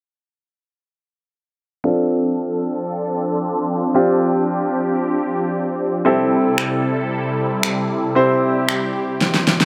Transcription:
1.84 supersaw synth F3 C4 D4 A4, grand piano C4 D4 F4 A4
3.95 grand piano C4 D4 F4 G4, supersaw synth G4
6.05 supersaw synth C3 G3 E4 A4, grand piano C4 E4 G4 A4
6.58 finger snap
7.63 finger snap
8.15 grand piano C4 E4 G4 C5, supersaw synth G4
8.69 finger snap
9.21 snare
9.34 snare
9.48 snare
9.61 snare

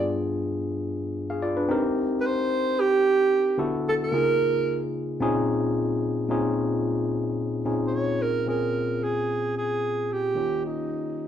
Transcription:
Already playing: tine electric piano G2 B3 D4 F4 G#4
1.30 tine electric piano G#4 F5
1.42 tine electric piano F4 D5
1.57 tine electric piano D4 B4
1.68 tine electric piano C4 D#4 G4 A#4
2.21 alto saxophone B4
2.26 alto saxophone C5
2.80 alto saxophone G4
3.58 tine electric piano D3 B3 E4 F#4 A4
3.89 alto saxophone A4
4.03 alto saxophone A#4
4.12 tine electric piano C#3 A#3 D#4 F4 G#4
5.20 tine electric piano A#2 C4 C#4 D#4 F4 G#4
6.29 tine electric piano A#2 C4 C#4 D#4 F4 G#4
7.65 tine electric piano A#2 C4 C#4 D#4 F4 G#4
7.87 alto saxophone C5
7.95 alto saxophone C#5
8.22 alto saxophone A#4
8.46 tine electric piano A#2 C4 C#4 F4 G#4, alto saxophone A#4
9.04 alto saxophone G#4
9.57 alto saxophone G#4
10.12 alto saxophone G4
10.35 tine electric piano D#3 A#3 C#4 F4 G4
10.65 alto saxophone D#4

